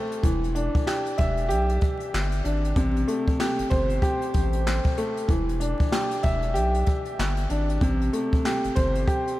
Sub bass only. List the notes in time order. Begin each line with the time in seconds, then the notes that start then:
0.24 E1
1.19 E1
1.51 B1
2.14 G1
2.45 G#1
2.76 A1
3.59 G1
3.72 G1
4.35 A1
5.29 E1
6.24 E1
6.56 B1
7.19 G1
7.51 G#1
7.82 A1
8.64 G1
8.77 G1